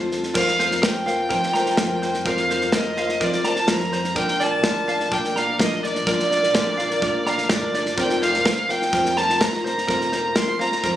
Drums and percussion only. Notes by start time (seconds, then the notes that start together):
0.11 snare
0.23 snare
0.35 kick, snare, crash
0.48 snare
0.59 snare
0.71 snare
0.83 kick, snare
1.07 snare
1.30 kick, snare
1.43 snare
1.54 snare
1.66 snare
1.77 kick, snare
2.02 snare
2.14 snare
2.25 kick, snare
2.37 snare
2.50 snare
2.61 snare
2.72 kick, snare
2.97 snare
3.09 snare
3.21 kick, snare
3.33 snare
3.44 snare
3.56 snare
3.68 kick, snare
3.80 snare
3.92 snare
4.04 snare
4.15 kick, snare
4.28 snare
4.40 snare
4.64 kick, snare
4.88 snare
5.00 snare
5.12 kick, snare
5.24 snare
5.36 snare
5.59 kick, snare
5.83 snare
5.95 snare
6.07 kick, snare
6.19 snare
6.31 snare
6.43 snare
6.55 kick, snare
6.79 snare
6.91 snare
7.02 kick, snare
7.26 snare
7.38 snare
7.49 kick, snare
7.74 snare
7.86 snare
7.98 kick, snare
8.10 snare
8.22 snare
8.34 snare
8.45 kick, snare
8.69 snare
8.82 snare
8.93 kick, snare
9.05 snare
9.17 snare
9.29 snare
9.41 kick, snare
9.54 snare
9.66 snare
9.78 snare
9.89 kick, snare
10.01 snare
10.12 snare
10.36 kick, snare
10.60 snare
10.72 snare
10.84 kick, snare